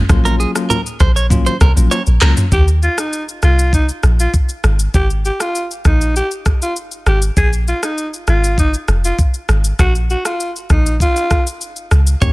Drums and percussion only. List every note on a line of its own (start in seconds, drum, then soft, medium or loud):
0.09 kick loud
0.09 cross-stick loud
0.09 low conga medium
0.09 shaker medium
0.25 high bongo medium
0.25 low bongo medium
0.25 shaker medium
0.40 shaker soft
0.55 cross-stick medium
0.55 shaker medium
0.70 high bongo medium
0.70 low conga medium
0.70 shaker medium
0.86 shaker medium
1.00 kick loud
1.00 cross-stick medium
1.00 low bongo medium
1.00 shaker soft
1.17 shaker medium
1.30 kick loud
1.30 low conga medium
1.30 shaker medium
1.46 low bongo medium
1.46 shaker medium
1.61 kick loud
1.61 cross-stick loud
1.61 low bongo medium
1.61 shaker medium
1.77 shaker loud
1.91 high bongo medium
1.91 shaker medium
2.06 shaker medium
2.21 cross-stick loud
2.21 clap loud
2.21 shaker medium
2.37 mid tom medium
2.37 shaker loud
2.52 kick loud
2.52 shaker medium
2.68 shaker medium
2.83 shaker soft
2.98 cross-stick medium
2.98 shaker medium
3.13 shaker medium
3.29 shaker medium
3.42 cross-stick medium
3.42 shaker soft
3.59 shaker medium
3.73 kick medium
3.73 shaker medium
3.89 shaker medium
4.03 cross-stick medium
4.03 shaker soft
4.20 shaker medium
4.34 kick medium
4.34 shaker medium
4.49 shaker medium
4.64 cross-stick loud
4.64 shaker soft
4.79 shaker loud
4.94 kick loud
4.94 shaker medium
5.10 shaker medium
5.25 shaker soft
5.40 cross-stick medium
5.40 shaker medium
5.55 shaker medium
5.71 shaker medium
5.85 kick loud
5.85 cross-stick medium
5.85 shaker soft
6.01 shaker medium
6.16 shaker medium
6.31 shaker medium
6.46 kick loud
6.46 cross-stick medium
6.46 shaker soft
6.62 shaker medium
6.76 shaker medium
6.91 shaker soft
7.06 cross-stick loud
7.06 shaker soft
7.22 shaker loud
7.37 kick loud
7.37 shaker medium
7.53 shaker medium
7.68 shaker soft
7.83 cross-stick medium
7.83 shaker medium
7.98 shaker medium
8.14 shaker medium
8.27 cross-stick medium
8.27 shaker soft
8.44 shaker medium
8.58 kick medium
8.58 shaker medium
8.74 shaker medium
8.88 cross-stick medium
8.88 shaker soft
9.04 shaker loud
9.19 kick loud
9.19 shaker medium
9.34 shaker medium
9.49 cross-stick loud
9.49 shaker soft
9.64 shaker loud
9.79 kick loud
9.79 cross-stick loud
9.79 shaker medium
9.95 shaker medium
10.10 shaker soft
10.25 cross-stick medium
10.25 shaker medium
10.40 shaker medium
10.56 shaker medium
10.70 kick loud
10.70 cross-stick medium
10.70 shaker soft
10.86 shaker medium
11.00 kick medium
11.00 shaker medium
11.16 shaker medium
11.30 kick medium
11.30 cross-stick medium
11.30 shaker soft
11.47 shaker medium
11.61 shaker medium
11.76 shaker medium
11.91 cross-stick loud
11.91 shaker soft
12.07 shaker loud
12.22 kick loud
12.22 low conga medium
12.22 shaker medium